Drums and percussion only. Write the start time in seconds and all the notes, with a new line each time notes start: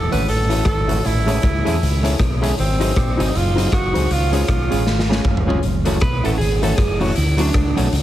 0.12 closed hi-hat
0.29 closed hi-hat
0.50 closed hi-hat
0.65 kick, cross-stick, closed hi-hat
0.89 closed hi-hat
1.05 closed hi-hat
1.28 closed hi-hat
1.42 kick, cross-stick, closed hi-hat
1.67 closed hi-hat
1.83 closed hi-hat
2.05 closed hi-hat
2.19 kick, cross-stick, closed hi-hat
2.44 closed hi-hat
2.59 closed hi-hat
2.81 closed hi-hat
2.96 kick, cross-stick, closed hi-hat
3.20 closed hi-hat
3.35 closed hi-hat
3.58 closed hi-hat
3.72 kick, cross-stick, closed hi-hat
3.95 closed hi-hat
4.11 closed hi-hat
4.33 closed hi-hat
4.47 kick, cross-stick, closed hi-hat
4.72 closed hi-hat
4.87 snare
4.99 snare
5.12 snare
5.25 kick, mid tom
5.37 floor tom
5.50 floor tom
5.63 closed hi-hat
5.85 closed hi-hat
6.00 kick, cross-stick, closed hi-hat
6.25 closed hi-hat
6.41 closed hi-hat
6.63 closed hi-hat
6.78 kick, cross-stick, closed hi-hat
7.01 open hi-hat
7.16 closed hi-hat
7.38 closed hi-hat
7.53 kick, cross-stick, closed hi-hat
7.77 closed hi-hat
7.93 closed hi-hat